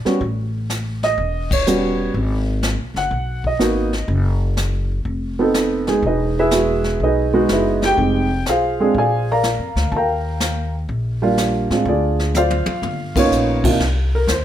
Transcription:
0.00 0.17 D5 medium
0.05 0.19 G3 medium
0.05 0.19 B3 medium
0.05 0.19 C#4 medium
0.05 0.19 F#4 medium
0.05 muted upright bass stroke soft
0.05 snare soft
0.21 1.13 A1 medium
0.21 brush sweep soft
0.21 kick soft
0.70 snare medium
0.70 hi-hat pedal medium
1.03 1.48 D#5 medium
1.03 snare soft
1.18 2.10 E1 medium
1.18 brush sweep soft
1.18 kick soft
1.51 2.11 C#5 medium
1.51 kick medium
1.51 ride medium
1.67 2.15 G3 medium
1.67 2.15 B3 medium
1.67 2.15 C#4 medium
1.67 2.15 F#4 medium
1.67 hi-hat pedal medium
2.14 2.75 G#1 medium
2.14 brush sweep soft
2.14 kick soft
2.63 snare medium
2.63 hi-hat pedal soft
2.79 2.94 B1 medium
2.94 3.10 F#1 medium
2.94 3.42 F#5 medium
2.94 snare soft
3.11 3.56 B1 medium
3.11 brush sweep soft
3.11 kick soft
3.44 4.06 D#5 medium
3.44 kick soft
3.59 4.05 G#1 medium
3.59 3.89 A#3 medium
3.59 3.89 B3 medium
3.59 3.90 D#4 medium
3.59 3.90 F#4 medium
3.59 snare medium
3.59 hi-hat pedal soft
3.93 snare soft
4.08 5.01 F#1 medium
4.08 brush sweep soft
4.08 kick soft
4.57 snare medium
4.57 hi-hat pedal soft
5.05 5.99 F1 medium
5.05 brush sweep soft
5.05 kick soft
5.39 5.84 B3 medium
5.39 5.84 C4 medium
5.39 5.85 D#4 medium
5.39 5.85 A4 medium
5.54 snare medium
5.54 hi-hat pedal medium
5.87 6.02 G#3 medium
5.87 6.01 B3 medium
5.87 6.02 D#4 medium
5.87 6.02 G#4 medium
5.87 snare soft
6.02 6.96 E1 medium
6.02 6.37 D#5 medium
6.02 brush sweep soft
6.02 kick soft
6.07 6.37 D#4 medium
6.07 6.37 G#4 medium
6.07 6.37 B4 medium
6.39 6.51 E4 medium
6.39 6.98 G#4 medium
6.39 6.98 B4 medium
6.39 6.98 E5 medium
6.51 7.27 G#3 medium
6.51 7.27 B3 medium
6.51 7.27 E4 medium
6.51 7.27 F#4 medium
6.51 snare medium
6.51 hi-hat pedal medium
6.84 snare soft
6.99 7.45 B1 medium
6.99 7.79 D#5 medium
6.99 brush sweep soft
6.99 kick soft
7.03 7.33 D#4 medium
7.03 7.51 G#4 medium
7.03 7.51 B4 medium
7.33 7.94 G#3 medium
7.33 7.94 B3 medium
7.33 7.95 D#4 medium
7.33 7.95 F#4 medium
7.49 7.94 F#1 medium
7.49 7.83 E4 medium
7.49 7.83 G#4 medium
7.49 7.83 E5 medium
7.49 snare medium
7.49 hi-hat pedal medium
7.53 7.83 B4 medium
7.82 7.97 G4 medium
7.82 8.43 G5 loud
7.82 snare soft
7.97 8.43 F1 medium
7.97 8.27 G#3 medium
7.97 8.27 C4 soft
7.97 8.28 D#4 soft
7.97 8.28 G4 medium
7.97 brush sweep soft
7.97 kick soft
8.46 9.25 F4 medium
8.46 8.80 G#4 medium
8.46 9.25 C5 medium
8.46 8.97 F5 medium
8.46 snare medium
8.46 hi-hat pedal soft
8.80 8.93 G#3 medium
8.80 8.93 C4 medium
8.80 8.94 D4 medium
8.80 8.94 G#4 medium
8.95 9.55 A#1 medium
8.95 9.29 D5 medium
8.95 9.28 F5 medium
8.95 9.28 G#5 medium
8.95 brush sweep soft
8.95 kick soft
8.99 9.29 G#4 medium
9.32 9.90 A#4 medium
9.32 9.90 D5 medium
9.32 9.89 F5 medium
9.32 9.90 A#5 medium
9.44 snare medium
9.44 hi-hat pedal medium
9.59 9.74 F2 medium
9.76 9.90 D2 medium
9.76 snare soft
9.92 10.85 D#2 medium
9.92 9.95 A5 medium
9.92 brush sweep soft
9.92 kick soft
9.96 10.72 A#4 medium
9.96 10.72 F5 medium
9.96 10.72 G5 medium
9.96 10.72 A#5 medium
10.40 snare medium
10.40 hi-hat pedal medium
10.89 11.66 A#1 medium
10.89 brush sweep soft
10.89 kick soft
11.22 11.67 G3 medium
11.22 11.67 A#3 medium
11.22 11.67 D4 medium
11.22 11.68 F4 medium
11.38 snare medium
11.38 hi-hat pedal medium
11.70 11.85 A2 medium
11.70 11.84 G#3 medium
11.70 11.84 C4 medium
11.70 11.84 D4 medium
11.70 11.85 F4 medium
11.70 snare soft
11.85 12.63 D2 medium
11.85 12.33 D4 medium
11.85 12.33 F4 medium
11.85 12.33 G#4 medium
11.85 12.32 D5 medium
11.85 brush sweep soft
11.85 kick soft
12.19 snare soft
12.35 13.14 F4 medium
12.35 12.81 C5 medium
12.35 12.81 D5 medium
12.35 13.13 F5 medium
12.35 hi-hat pedal medium
12.35 high tom soft
12.50 high tom medium
12.66 muted upright bass stroke soft
12.66 high tom medium
12.82 13.27 G1 medium
12.82 mid tom medium
13.16 13.61 A#3 medium
13.16 13.61 B3 medium
13.16 13.62 C#4 medium
13.16 13.62 D#4 medium
13.16 13.62 F4 medium
13.16 13.62 C#5 medium
13.16 kick medium
13.16 ride medium
13.30 13.76 A#1 medium
13.30 hi-hat pedal medium
13.64 13.78 C3 medium
13.64 13.78 A#3 medium
13.64 13.79 D4 medium
13.64 13.79 D#4 medium
13.64 13.79 F4 medium
13.64 kick medium
13.64 crash medium
13.79 14.27 C2 medium
13.79 brush sweep soft
13.79 kick soft
13.79 snare soft
14.15 14.29 A#4 medium
14.27 14.45 D#2 medium
14.27 14.45 C5 medium
14.27 kick soft
14.27 snare medium
14.27 hi-hat pedal medium

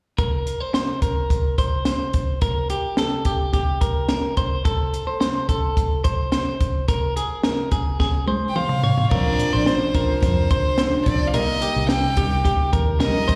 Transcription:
0.18 0.60 A#4 medium
0.18 kick medium
0.18 closed hi-hat medium
0.47 closed hi-hat medium
0.60 0.73 C5 medium
0.74 1.02 C5 medium
0.74 snare medium
0.74 closed hi-hat medium
1.02 1.55 A#4 medium
1.02 kick medium
1.02 closed hi-hat medium
1.30 kick medium
1.30 closed hi-hat medium
1.58 1.85 C5 medium
1.58 kick medium
1.58 closed hi-hat medium
1.85 2.39 C5 medium
1.85 snare medium
1.85 closed hi-hat medium
2.13 kick medium
2.13 closed hi-hat medium
2.42 2.70 A#4 medium
2.42 kick medium
2.42 closed hi-hat medium
2.70 2.98 G4 medium
2.70 closed hi-hat medium
2.97 3.26 A4 medium
2.97 snare medium
2.97 closed hi-hat medium
3.25 3.52 G4 medium
3.25 kick medium
3.25 closed hi-hat medium
3.53 3.81 G4 medium
3.53 kick medium
3.53 snare soft
3.53 closed hi-hat medium
3.81 4.08 A#4 medium
3.81 kick medium
3.81 closed hi-hat medium
4.09 4.37 A#4 medium
4.09 snare medium
4.09 closed hi-hat medium
4.37 4.65 C5 medium
4.37 kick medium
4.37 closed hi-hat medium
4.65 5.05 A4 medium
4.65 kick loud
4.65 closed hi-hat medium
4.94 closed hi-hat medium
5.07 5.19 C5 medium
5.20 5.49 C5 medium
5.20 snare medium
5.20 closed hi-hat medium
5.49 6.02 A4 medium
5.49 kick medium
5.49 closed hi-hat medium
5.77 kick medium
5.77 closed hi-hat medium
6.04 6.31 C5 medium
6.04 kick medium
6.04 closed hi-hat medium
6.32 6.85 C5 medium
6.32 snare medium
6.32 closed hi-hat medium
6.61 kick medium
6.61 closed hi-hat medium
6.88 7.16 A#4 medium
6.88 kick loud
6.88 closed hi-hat medium
7.16 7.44 G#4 medium
7.16 closed hi-hat medium
7.44 7.71 A#4 medium
7.44 snare loud
7.44 closed hi-hat medium
7.72 7.99 G#4 medium
7.72 kick medium
7.72 closed hi-hat medium
8.00 8.27 G#4 medium
8.00 kick medium
8.00 snare soft
8.28 8.55 C5 medium
8.28 high tom medium
8.49 8.57 G5 medium
8.56 8.83 C5 medium
8.56 9.11 F5 medium
8.56 mid tom medium
8.69 mid tom medium
8.83 9.11 C#5 medium
8.83 floor tom medium
8.98 floor tom medium
9.11 9.35 A#1 medium
9.11 9.53 A#2 medium
9.11 9.54 D3 medium
9.11 9.54 F3 medium
9.11 9.54 C4 medium
9.11 9.52 D4 medium
9.11 9.51 A#4 medium
9.11 9.69 D5 medium
9.11 kick loud
9.11 crash medium
9.39 closed hi-hat medium
9.53 10.19 A#1 medium
9.53 9.94 F3 soft
9.53 9.96 C4 soft
9.53 9.95 D4 soft
9.53 9.66 C5 medium
9.66 9.95 C5 medium
9.66 10.23 C5 medium
9.66 snare loud
9.66 closed hi-hat medium
9.94 10.76 D3 soft
9.94 10.78 F3 medium
9.94 10.79 C4 medium
9.94 10.79 D4 medium
9.94 10.47 A#4 medium
9.94 kick medium
9.94 closed hi-hat medium
10.22 10.51 F2 medium
10.22 11.03 C5 medium
10.22 kick medium
10.22 snare soft
10.22 closed hi-hat medium
10.51 10.98 D2 medium
10.51 10.77 C5 medium
10.51 kick medium
10.51 closed hi-hat medium
10.77 10.92 D3 medium
10.77 10.93 F3 medium
10.77 10.92 C4 medium
10.77 10.90 D4 medium
10.77 11.31 C5 medium
10.77 snare medium
10.77 closed hi-hat medium
10.92 11.06 F3 soft
10.92 11.07 C4 soft
10.92 11.06 D4 soft
11.06 11.35 A#1 medium
11.06 11.33 D3 medium
11.06 11.34 F3 medium
11.06 11.35 C4 medium
11.06 11.35 D4 medium
11.06 11.29 D5 medium
11.06 kick medium
11.06 closed hi-hat medium
11.27 11.35 F5 medium
11.33 11.58 C2 medium
11.33 11.75 C3 medium
11.33 11.76 G3 medium
11.33 11.75 A#3 medium
11.33 11.73 D#4 medium
11.33 11.62 A#4 medium
11.33 11.89 D#5 medium
11.33 closed hi-hat medium
11.62 11.90 G4 medium
11.62 closed hi-hat medium
11.75 12.70 C2 medium
11.75 12.17 G3 soft
11.75 12.18 A#3 soft
11.75 12.17 D#4 soft
11.89 12.17 A4 medium
11.89 12.69 G5 medium
11.89 snare loud
11.89 closed hi-hat medium
12.17 12.99 C3 medium
12.17 13.01 G3 medium
12.17 13.02 A#3 medium
12.17 13.02 D#4 medium
12.17 12.44 G4 medium
12.17 kick medium
12.17 closed hi-hat medium
12.45 12.72 G4 medium
12.45 kick medium
12.45 snare soft
12.45 closed hi-hat medium
12.73 13.01 D#2 medium
12.73 12.99 A#4 medium
12.73 kick medium
12.73 closed hi-hat medium
13.00 13.25 A#1 medium
13.00 13.15 C3 medium
13.00 13.15 G3 medium
13.00 13.16 A#3 medium
13.00 13.14 D#4 medium
13.00 13.27 A#4 medium
13.00 13.35 D#5 medium
13.00 snare medium
13.00 closed hi-hat medium
13.15 13.29 G3 soft
13.15 13.30 A#3 soft
13.15 13.29 D#4 soft
13.28 13.35 D#2 medium
13.28 13.35 C3 medium
13.28 13.35 G3 medium
13.28 13.35 A#3 medium
13.28 13.35 C5 medium
13.28 kick medium
13.28 closed hi-hat medium
13.32 13.35 D#4 medium

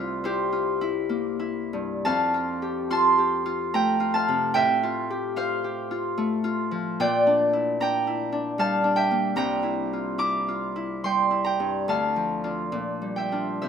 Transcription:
0.00 2.09 C2 medium
0.00 0.16 C4 soft
0.00 0.23 E4 medium
0.00 0.45 F4 medium
0.00 0.23 C5 medium
0.00 2.09 E5 medium
0.24 0.80 E4 medium
0.24 2.09 G4 medium
0.24 4.15 C5 medium
0.52 1.02 F4 soft
0.81 1.38 E4 medium
1.09 2.08 A#3 medium
1.39 2.08 E4 medium
1.73 2.08 G2 medium
2.05 4.60 F2 medium
2.05 4.14 F5 medium
2.05 2.91 A5 loud
2.34 2.89 F4 medium
2.62 3.11 G4 medium
2.90 3.44 F4 medium
2.90 4.13 A5 medium
2.90 6.81 C6 loud
3.18 3.66 G4 medium
3.46 3.99 F4 medium
3.74 6.16 A3 medium
3.74 4.53 G5 medium
3.74 4.44 A#5 loud
4.00 4.82 F4 medium
4.14 5.35 F5 medium
4.14 7.01 A5 loud
4.28 4.60 C3 medium
4.54 7.01 A2 medium
4.54 7.01 E5 medium
4.54 5.93 G5 loud
4.83 5.35 F4 medium
5.10 5.57 G4 medium
5.36 5.90 F4 medium
5.36 7.01 C5 medium
5.36 7.01 F5 medium
5.64 6.10 G4 medium
5.91 6.43 F4 medium
6.18 7.01 A3 medium
6.44 7.01 F4 medium
6.71 7.02 F3 medium
7.00 9.41 A#2 medium
7.00 10.91 D5 medium
7.00 7.81 G5 loud
7.27 7.79 D4 medium
7.53 7.97 E4 medium
7.80 8.31 D4 medium
7.80 8.95 G5 medium
7.80 9.35 A#5 loud
8.07 8.51 E4 medium
8.32 8.83 D4 medium
8.58 11.03 G3 medium
8.58 9.41 F5 medium
8.58 9.26 A5 loud
8.84 12.43 D4 medium
8.96 11.91 E5 medium
8.96 9.36 G5 medium
9.11 11.91 A#3 medium
9.36 11.90 C2 medium
9.36 11.04 G5 medium
9.36 10.18 A#5 loud
9.63 10.17 E4 medium
9.93 10.39 F4 soft
10.18 10.75 E4 medium
10.18 11.43 A#5 medium
10.18 13.65 D6 loud
10.48 10.95 F4 medium
10.76 11.30 E4 medium
11.04 11.91 G3 soft
11.04 11.45 G5 medium
11.04 11.91 C6 medium
11.31 11.91 E4 medium
11.45 11.91 G5 medium
11.45 11.90 A#5 medium
11.60 11.91 G2 soft
11.88 12.76 D2 medium
11.88 13.66 F5 medium
11.88 13.17 A5 medium
12.16 13.65 F3 soft
12.44 13.31 D4 soft
12.44 13.31 F4 soft
12.72 13.65 A#2 medium
13.02 13.69 G3 soft
13.16 13.60 E5 medium
13.16 13.69 G5 medium
13.32 13.65 D4 soft
13.32 13.65 F4 soft
13.62 13.69 C3 medium
13.62 13.69 C5 soft
13.62 13.69 E5 medium

